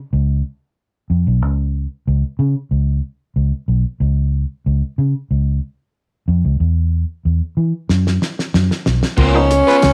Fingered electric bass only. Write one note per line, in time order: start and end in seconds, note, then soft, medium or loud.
0.13 0.41 C#2 medium
1.10 1.25 F2 medium
1.27 1.42 B1 medium
1.42 1.85 C#2 loud
2.07 2.22 C#2 medium
2.39 2.54 C#3 loud
2.71 2.99 C#2 medium
3.36 3.51 C#2 medium
3.68 3.83 B1 medium
4.00 4.44 C#2 loud
4.66 4.81 C#2 medium
4.98 5.13 C#3 medium
5.31 5.59 C#2 medium
6.28 6.43 F2 medium
6.45 6.58 C#2 medium
6.60 7.03 E2 medium
7.25 7.40 E2 medium
7.57 7.72 E3 medium
7.89 8.18 F#2 medium
8.55 8.69 F#2 medium
8.87 9.01 B1 medium
9.18 9.61 C#2 loud
9.84 9.93 C#2 loud